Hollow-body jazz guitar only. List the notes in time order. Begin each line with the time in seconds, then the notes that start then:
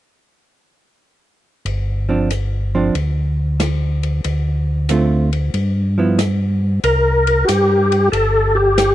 2.09 F3 C4 D4
2.75 F3 C4 D4
4.90 D3 A3 C4 F4
5.98 F3 B3 E4